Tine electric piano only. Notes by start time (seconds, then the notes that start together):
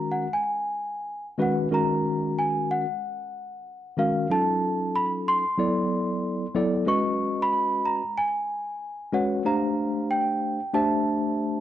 Already playing: D#3 G#3 C#4 F#4 A#4
1.38 D#3 G#3 C#4 F#4 B4
1.71 D#3 G#3 C#4 F#4 A#4
3.97 D#3 G#3 C#4 F#4 A#4
4.30 F#3 C#4 D#4 F4 A4
5.58 F#3 B3 E4 A4 D5
6.54 F#3 B3 E4 A4 D5
6.86 G#3 C#4 F#4 B4 D#5
9.13 G#3 C#4 F#4 B4 C#5
9.45 A3 D4 G4 C5 F5
10.74 A3 D4 G4 C5 E5